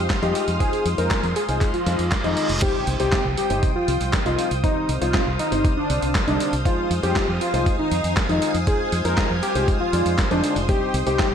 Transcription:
Already playing: C5 F5 C6 D#6
0.10 kick, snare, clap, closed hi-hat
0.22 F2 G#3 D#4 F4 G4 D#5, closed hi-hat
0.35 closed hi-hat
0.48 F2, closed hi-hat
0.60 G#3 D#4 F4 G#4 C5, kick, closed hi-hat
0.73 closed hi-hat
0.85 F2, closed hi-hat
0.98 F2 G#3 D#4 F4 A#4 C5, closed hi-hat
1.11 kick, snare, clap, closed hi-hat
1.23 F2, closed hi-hat
1.36 G#4, closed hi-hat
1.49 C2 G#3 D#4 F4 C5, closed hi-hat
1.61 kick, clap, closed hi-hat, reverse cymbal
1.74 F4, closed hi-hat
1.86 F2 G#3 D#4 F4 C5, snare, closed hi-hat
1.99 F2, closed hi-hat
2.12 kick, snare, clap, closed hi-hat
2.24 F2 G#3 D#4 F4 D#5, closed hi-hat
2.37 closed hi-hat
2.49 F1, closed hi-hat
2.62 C3 G3 C4 D#4 G4 C5 G5 D#6, kick, closed hi-hat, crash, impact
2.87 C2, closed hi-hat
3.00 C2 C3 G3 C4 D#4 G4 C5, closed hi-hat
3.12 kick, snare, clap, closed hi-hat
3.25 C2
3.38 G4, closed hi-hat
3.50 G1 C3 G3 C4 D#4 C5, closed hi-hat
3.63 kick, closed hi-hat
3.76 F4
3.88 C2, closed hi-hat
4.01 C2, closed hi-hat
4.13 kick, snare, clap, closed hi-hat
4.26 C2 C3 G3 C4 D#4 F4 D#5, closed hi-hat
4.39 closed hi-hat
4.51 C2, closed hi-hat
4.64 C3 G3 C4 D#4 C5 F5, kick, closed hi-hat
4.89 C2, closed hi-hat
5.01 C2 C3 G3 C4 D#4 F4 C5, closed hi-hat
5.14 kick, snare, clap, closed hi-hat
5.27 C2
5.39 D#4, closed hi-hat
5.52 G1 C3 G3 C4 D#4 C5, closed hi-hat
5.65 kick, closed hi-hat
5.77 D4
5.90 C2, closed hi-hat
6.02 C2, closed hi-hat
6.15 kick, snare, clap, closed hi-hat
6.28 C2 C3 G3 C4 D4 D#4 D#5, closed hi-hat
6.40 closed hi-hat
6.53 C2, closed hi-hat
6.65 G#3 D#4 F4 C5 G#5, kick, closed hi-hat
6.91 F2, closed hi-hat
7.03 F2 G#3 D#4 F4 G4 C5, closed hi-hat
7.16 kick, snare, clap, closed hi-hat
7.28 F2
7.41 F4, closed hi-hat
7.54 C2 G#3 D#4 F4 C5, closed hi-hat
7.66 kick, closed hi-hat
7.79 D#4
7.92 F2, closed hi-hat
8.04 F2, closed hi-hat
8.17 kick, snare, clap, closed hi-hat
8.29 F2 G#3 D#4 F4 D#5, closed hi-hat
8.42 closed hi-hat
8.54 F2, closed hi-hat
8.67 G#3 D#4 F4 G#4 C5, kick, closed hi-hat
8.92 F2, closed hi-hat
9.05 F2 G#3 D#4 F4 A#4 C5, closed hi-hat
9.18 kick, snare, clap, closed hi-hat
9.30 F2
9.43 G4, closed hi-hat
9.55 C2 G#3 D#4 F4 C5, closed hi-hat
9.68 kick, closed hi-hat
9.81 F4
9.93 F2 G#3 D#4 F4 D5, closed hi-hat
10.06 F2, closed hi-hat
10.18 kick, snare, clap, closed hi-hat
10.31 F2 G#3 D4 D#4 F4 C5, closed hi-hat
10.44 closed hi-hat
10.56 F1, closed hi-hat
10.69 C3 G3 C4 D#4 G4 C5 G5, kick, closed hi-hat
10.94 C2, closed hi-hat
11.07 C2 C3 G3 C4 D#4 G4 C5, closed hi-hat
11.19 kick, snare, clap, closed hi-hat

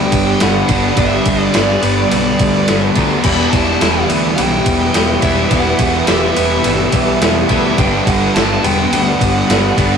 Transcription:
Already playing: G2 D3 G3 B3 D4 G4 D5 G5 B5
0.12 G1 G3 B3 D4 G4, kick, ride
0.39 G1 G2 D3 G3 B3 D4 G4 F#5, snare, ride
0.44 G3
0.68 G1 G2 D3 G3 B3 D4 G4, kick, ride
0.96 G1 G2 D3 G3 B3 D4 G4 E5, kick, ride
1.00 G3
1.24 G1 G3 B3 D4 G4, kick, ride
1.43 D5
1.51 G1 G2 D3 G3 B3 D4 G4 D5, snare, ride
1.56 G3
1.82 G1 D3 G3 B3, ride
2.10 B1 G2 D3 G3 D5, ride
2.38 D2 G3 B3 D4 G4, kick, ride
2.67 G1 G2 D3 G3 B3 D4 G4, snare, ride
2.94 D2 G2 D3 F#3 G3 B3 D4 G4, kick, ride
3.23 E1 E2 B2 E3 G3 B3 E4 G4 E5 B5, kick, crash
3.27 B4
3.51 E1 E3 G3 E4 G4 A5, kick, ride
3.80 E1 E2 B2 E3 G3 E4 G4, snare, ride
4.08 D2 B2 E3 B3, ride
4.35 B1 E2 B2 E3 G3 G5, ride
4.64 E1 E3 G3 E4 G4, kick, ride
4.92 E1 E2 B2 E3 G3 B3 E4 G4, snare, ride
5.21 E1 E3 G3 B3 E4 G4 E5, kick, ride
5.49 E1 E2 B2 E3 G3 B3 E4 G4 F#5 A5, kick, ride
5.79 E1 E3 G3 E4 G4, kick, ride
6.07 E1 E2 B2 E3 G3 E4 G4 E5, snare, ride
6.11 E3
6.35 E1 B2 E3 B3, ride
6.63 G1 E2 B2 E3 G3, ride
6.92 B1 E3 G3 E4 G4, kick, ride
7.21 E1 E2 B2 E3 G3 B3 E4 G4, snare, ride
7.49 D2 E3 G3 B3 E4 G4 E5, kick, ride
7.76 G1 G2 D3 G3 B3 D4 G4 D5 F#5 G5 B5, kick, ride
7.80 G3
8.07 G1 G3 B3 D4 G4 F#5, kick, ride
8.34 G1 G2 D3 G3 B3 D4 G4 A5, snare, ride
8.62 E1 D3 G3 B3 G5, ride
8.89 D2 G2 D3 G3 G5, ride
9.02 F#5
9.19 G1 G3 B3 D4 G4, kick, ride
9.47 G1 G2 D3 G3 B3 D4 G4, ride
9.51 snare
9.76 G1 G2 D3 G3 B3 D4 G4, kick, ride

